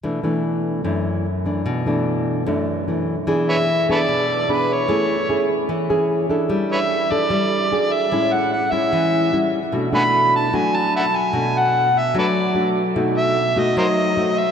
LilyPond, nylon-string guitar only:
\new Staff \with { instrumentName = "Nylon-string guitar" } { \time 4/4 \key b \dorian \tempo 4 = 149 << { <e a d'>8 <e a d'>4. <e a d'>4 r8 <e a d'>8~ | <e a d'>8 <e a d'>4. <e a d'>4 <e a d'>8 r8 | <b d' gis'>4 r8 <b d' gis'>4. <b d' gis'>8 r8 | <cis' e' gis'>8 r8 <cis' e' gis'>4 r8 <cis' e' gis'>4 <d' e' a'>8~ |
<d' e' a'>4. <d' e' a'>4. <d' fis' gis'>4 | <gis cis' e'>4 r8 <gis cis' e'>4. <g cis' e'>8 r8 | <a d' fis'>8 <a d' fis'>4. <a d' fis'>4. r8 | <a d' fis'>4. r8 <a d' fis'>4 <a d' fis'>8 r8 |
<a dis' fis'>4 r8 <a dis' fis'>4. <a dis' fis'>8 r8 | } \\ { b,2 fis,2 | b,2 fis,2 | e2 b,2 | a2 e2 |
g2 g4 r4 | a,2 e4 r4 | b,2 fis2 | b,2 fis2 |
b,2 fis2 | } >> }